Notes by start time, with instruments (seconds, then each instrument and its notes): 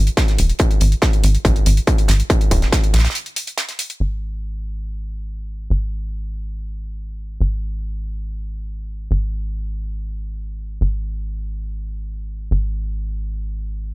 0.07 closed hi-hat
0.17 kick, snare, closed hi-hat
0.28 snare, closed hi-hat
0.38 analog synth bass D#1, closed hi-hat, open hi-hat
0.50 closed hi-hat
0.59 kick, closed hi-hat
0.71 closed hi-hat
0.80 analog synth bass G#1, closed hi-hat, open hi-hat
0.92 closed hi-hat
1.02 kick, snare, closed hi-hat
1.13 closed hi-hat
1.24 analog synth bass G#1, closed hi-hat, open hi-hat
1.35 closed hi-hat
1.45 analog synth bass G#1, kick, closed hi-hat
1.56 closed hi-hat
1.66 analog synth bass G#1, closed hi-hat, open hi-hat
1.77 closed hi-hat
1.87 kick, closed hi-hat
1.98 closed hi-hat
2.08 analog synth bass G#1, snare, closed hi-hat, open hi-hat
2.20 closed hi-hat
2.30 kick, closed hi-hat
2.41 closed hi-hat
2.51 analog synth bass D#1, kick, closed hi-hat, open hi-hat
2.62 snare, closed hi-hat
2.72 kick, snare, closed hi-hat
2.84 closed hi-hat
2.94 analog synth bass A#1, snare, closed hi-hat, open hi-hat
2.99 snare, closed hi-hat
3.05 snare, closed hi-hat
3.10 snare, closed hi-hat
3.15 closed hi-hat
3.26 closed hi-hat
3.36 closed hi-hat, open hi-hat
3.47 closed hi-hat
3.58 snare, closed hi-hat
3.69 snare, closed hi-hat
3.79 closed hi-hat, open hi-hat
3.90 closed hi-hat
4.00 analog synth bass G#1
5.70 analog synth bass G#1
7.41 analog synth bass G#1
9.11 analog synth bass G#1
10.81 analog synth bass G#1
12.51 analog synth bass G#1